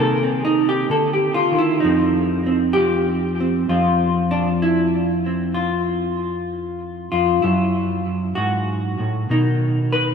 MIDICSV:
0, 0, Header, 1, 2, 480
1, 0, Start_track
1, 0, Tempo, 931677
1, 1896, Time_signature, 4, 2, 24, 8
1, 5226, End_track
2, 0, Start_track
2, 0, Title_t, "Hollow-body jazz guitar"
2, 0, Program_c, 0, 26
2, 0, Note_on_c, 0, 48, 80
2, 0, Note_on_c, 0, 51, 55
2, 0, Note_on_c, 0, 58, 53
2, 0, Note_on_c, 0, 69, 84
2, 119, Note_on_c, 0, 60, 65
2, 151, Note_off_c, 0, 69, 0
2, 228, Note_off_c, 0, 60, 0
2, 230, Note_on_c, 0, 63, 102
2, 345, Note_off_c, 0, 63, 0
2, 354, Note_on_c, 0, 67, 100
2, 446, Note_off_c, 0, 67, 0
2, 458, Note_off_c, 0, 48, 0
2, 460, Note_on_c, 0, 50, 65
2, 469, Note_on_c, 0, 69, 90
2, 582, Note_off_c, 0, 69, 0
2, 584, Note_on_c, 0, 67, 77
2, 690, Note_off_c, 0, 67, 0
2, 692, Note_on_c, 0, 65, 94
2, 775, Note_off_c, 0, 51, 0
2, 781, Note_off_c, 0, 50, 0
2, 781, Note_on_c, 0, 51, 66
2, 815, Note_off_c, 0, 65, 0
2, 816, Note_on_c, 0, 64, 84
2, 917, Note_off_c, 0, 64, 0
2, 922, Note_off_c, 0, 58, 0
2, 929, Note_on_c, 0, 63, 78
2, 938, Note_off_c, 0, 51, 0
2, 945, Note_on_c, 0, 41, 80
2, 949, Note_on_c, 0, 53, 59
2, 952, Note_on_c, 0, 60, 54
2, 1263, Note_off_c, 0, 60, 0
2, 1269, Note_on_c, 0, 60, 54
2, 1407, Note_on_c, 0, 67, 108
2, 1416, Note_off_c, 0, 53, 0
2, 1422, Note_on_c, 0, 53, 69
2, 1744, Note_off_c, 0, 60, 0
2, 1754, Note_on_c, 0, 60, 55
2, 1813, Note_off_c, 0, 63, 0
2, 1880, Note_off_c, 0, 53, 0
2, 1885, Note_off_c, 0, 60, 0
2, 1892, Note_off_c, 0, 67, 0
2, 1893, Note_off_c, 0, 41, 0
2, 1899, Note_on_c, 0, 41, 67
2, 1903, Note_on_c, 0, 65, 78
2, 1905, Note_on_c, 0, 53, 48
2, 1909, Note_on_c, 0, 60, 46
2, 2221, Note_on_c, 0, 62, 91
2, 2303, Note_off_c, 0, 62, 0
2, 2381, Note_on_c, 0, 64, 84
2, 2701, Note_off_c, 0, 65, 0
2, 2705, Note_off_c, 0, 60, 0
2, 2711, Note_on_c, 0, 60, 45
2, 2856, Note_on_c, 0, 65, 74
2, 3338, Note_off_c, 0, 64, 0
2, 3658, Note_off_c, 0, 65, 0
2, 3660, Note_off_c, 0, 41, 0
2, 3667, Note_on_c, 0, 65, 79
2, 3669, Note_on_c, 0, 41, 62
2, 3801, Note_off_c, 0, 53, 0
2, 3803, Note_off_c, 0, 60, 0
2, 3820, Note_off_c, 0, 65, 0
2, 3821, Note_off_c, 0, 41, 0
2, 3824, Note_on_c, 0, 64, 74
2, 3829, Note_on_c, 0, 42, 77
2, 3832, Note_on_c, 0, 54, 52
2, 4303, Note_off_c, 0, 42, 0
2, 4304, Note_on_c, 0, 66, 85
2, 4312, Note_on_c, 0, 44, 62
2, 4627, Note_off_c, 0, 44, 0
2, 4633, Note_on_c, 0, 45, 59
2, 4765, Note_off_c, 0, 54, 0
2, 4780, Note_off_c, 0, 64, 0
2, 4780, Note_off_c, 0, 66, 0
2, 4784, Note_off_c, 0, 45, 0
2, 4790, Note_on_c, 0, 47, 73
2, 4794, Note_on_c, 0, 51, 50
2, 4797, Note_on_c, 0, 63, 89
2, 5113, Note_on_c, 0, 71, 98
2, 5226, Note_off_c, 0, 47, 0
2, 5226, Note_off_c, 0, 51, 0
2, 5226, Note_off_c, 0, 63, 0
2, 5226, Note_off_c, 0, 71, 0
2, 5226, End_track
0, 0, End_of_file